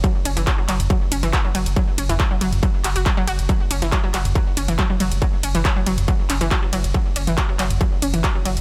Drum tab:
RD |--x---x---x---x-|--x---x---x---x-|--x---x---x---x-|--x---x---x---x-|
HH |x-oxx-oxx-oxx-ox|x-oxx-oxx-oxx-ox|x-oxx-oxx-oxx-ox|x-oxx-oxx-oxx-ox|
CP |----x-x-----x---|----x-----x-x---|----x-x-----x---|----x-----x-x---|
T2 |-------o--------|---o---o--------|-------o--------|-------o--------|
BD |o---o---o---o---|o---o---o---o---|o---o---o---o---|o---o---o---o---|

RD |--x---x---x---x-|
HH |x-oxx-oxx-oxx-ox|
CP |----x-x-----x---|
T2 |-------o--------|
BD |o---o---o---o---|